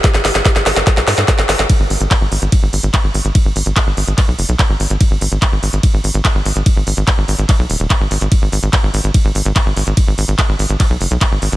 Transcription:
<<
  \new Staff \with { instrumentName = "Analog synth bass" } { \clef bass \time 4/4 \key gis \minor \tempo 4 = 145 r16 gis,,16 gis,,16 gis,,16 r16 gis,,16 gis,,16 gis,,16 r16 b,,16 gis,16 gis,16 r16 gis,,16 gis,,16 gis,,16 | r16 gis,,16 gis,,16 gis,,16 r16 gis,,16 gis,,16 gis,,16 r16 gis,,16 gis,,16 gis,,16 r16 gis,,16 gis,,16 gis,,16 | r16 gis,,16 gis,,16 gis,,16 r16 gis,,16 gis,,16 gis,,16 r16 b,,16 fis,,16 b,,16 r16 gis,,16 gis,,16 gis,,16 | r16 gis,,16 gis,,16 gis,,16 r16 gis,,16 gis,,16 gis,,16 r16 gis,,16 gis,,16 gis,,16 r16 gis,,16 gis,,16 gis,,16 |
r16 gis,,16 gis,,16 gis,,16 r16 gis,,16 gis,,16 gis,,16 r16 b,,16 dis,,16 dis,,16 r16 gis,,16 gis,,16 gis,,16 | r16 gis,,16 gis,,16 gis,,16 r16 gis,,16 gis,,16 gis,,16 r16 gis,,16 gis,,16 gis,,16 r16 gis,,16 gis,,16 gis,,16 | r16 gis,,16 gis,,16 gis,,16 r16 gis,,16 gis,,16 gis,,16 r16 b,,16 fis,,16 b,,16 r16 gis,,16 gis,,16 gis,,16 | }
  \new DrumStaff \with { instrumentName = "Drums" } \drummode { \time 4/4 <hh bd sn>16 <hh sn>16 <hho sn>16 sn16 <hh bd sn>16 <hh sn>16 <hho sn>16 <hh sn>16 <hh bd sn>16 <hh sn>16 <hho sn>16 <hh sn>16 <hh bd sn>16 <hh sn>16 <hho sn>16 <hh sn>16 | <hh bd cymr>8 hho16 hh16 <hc hh bd cymr>8 hho16 hh16 <hh bd cymr>8 hho16 hh16 <hc hh bd cymr>8 hho16 hh16 | <hh bd cymr>8 hho16 hh16 <hc hh bd cymr>8 hho16 hh16 <hc hh bd cymr>8 hho16 hh16 <hc hh bd cymr>8 hho16 hh16 | <hh bd cymr>8 hho16 hh16 <hc hh bd cymr>8 hho16 hh16 <hh bd cymr>8 hho16 hh16 <hc hh bd cymr>8 hho16 hh16 |
<hh bd cymr>8 hho16 hh16 <hc hh bd cymr>8 hho16 hh16 <hc hh bd cymr>8 hho16 hh16 <hc hh bd cymr>8 hho16 hh16 | <hh bd cymr>8 hho16 hh16 <hc hh bd cymr>8 hho16 hh16 <hh bd cymr>8 hho16 hh16 <hc hh bd cymr>8 hho16 hh16 | <hh bd cymr>8 hho16 hh16 <hc hh bd cymr>8 hho16 hh16 <hc hh bd cymr>8 hho16 hh16 <hc hh bd cymr>8 hho16 hh16 | }
>>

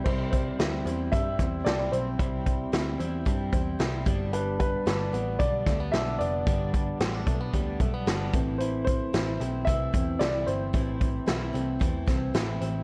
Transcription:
<<
  \new Staff \with { instrumentName = "Upright piano" } { \time 4/4 \key c \major \tempo 4 = 112 c''8 c''4. e''4 d''8 c''8~ | c''4. r2 r8 | b'8 b'4. d''4 e''8 d''8~ | d''4. r2 r8 |
c''8 c''4. e''4 d''8 c''8~ | c''4. r2 r8 | }
  \new Staff \with { instrumentName = "Clean electric guitar" } { \time 4/4 \key c \major <g e'>8 g8 e'8 c'8 g8 c'8 d'16 e'16 c'8 | <g e'>8 g8 e'8 c'8 g8 c'8 e'8 g8 | <g d'>8 g8 d'8 b8 g8 a16 b16 d'8 b8 | <g d'>8 g8 c'16 d'16 a16 b16 g8 a16 b16 d'8 e8 |
<e e'>8 e8 e'8 c'8 e8 c'8 e'8 c'8 | <e e'>8 e8 e'8 c'8 e8 c'8 e'8 c'8 | }
  \new Staff \with { instrumentName = "Twelve-string acoustic guitar" } { \time 4/4 \key c \major <c g c' e'>4 <c g c' e'>8 <g c' e'>8 <c g c' e'>8 <g c' e'>8 <c g c' e'>4 | <c g c' e'>4 <c g c' e'>8 <g c' e'>8 <c g c' e'>8 <g c' e'>8 <c g c' e'>8 <g, d g b d'>8~ | <g, d g b d'>4 <d g b d'>8 <g b d'>8 <d g b d'>8 <g b d'>8 <d g b d'>4 | <g, d g b d'>4 <d g b d'>8 <g b d'>8 <d g b d'>8 <g b d'>8 <d g b d'>8 <a, e a c' e'>8~ |
<a, e a c' e'>4 <e a c' e'>8 <a c' e'>8 <e a c' e'>8 <a c' e'>8 <e a c' e'>4 | <a, e a c' e'>4 <e a c' e'>8 <a c' e'>8 <e a c' e'>8 <a c' e'>8 <e a c' e'>4 | }
  \new Staff \with { instrumentName = "Picked electric bass" } { \clef bass \time 4/4 \key c \major c,4 d,8 e,8 g,8 e,8 c,8 b,,8 | c,4 d,8 e,8 g,8 e,8 c,8 g,,8~ | g,,4 g,,8 a,,8 b,,8 d,8 b,,8 f,,8 | g,,4 a,,8 b,,8 d,8 b,,8 g,,8 a,,8~ |
a,,4 a,,8 b,,8 c,8 e,8 c,8 g,,8 | a,,4 b,,8 c,8 e,8 c,8 a,,8 a,,8 | }
  \new DrumStaff \with { instrumentName = "Drums" } \drummode { \time 4/4 <cymc bd>8 <hh bd>8 <hh sn>8 hh8 <hh bd>8 <hh bd sn>8 <hh sn>8 hh8 | <hh bd>8 <hh bd>8 <hh sn>8 hh8 <hh bd>8 <hh bd>8 <hh sn>8 <hh bd>8 | hh8 <hh bd>8 <hh sn>8 hh8 <hh bd>8 <hh bd sn>8 <hh sn>8 hh8 | <hh bd>8 <hh bd>8 <hh sn>8 <hh bd>8 <hh bd>8 <hh bd>8 <hh sn>8 <hh bd>8 |
hh8 <hh bd>8 <hh sn>8 hh8 <hh bd>8 <hh bd>8 <hh sn>8 hh8 | <hh bd>8 <hh bd>8 <hh sn>8 hh8 <hh bd>8 <hh bd sn>8 <hh sn>8 hh8 | }
>>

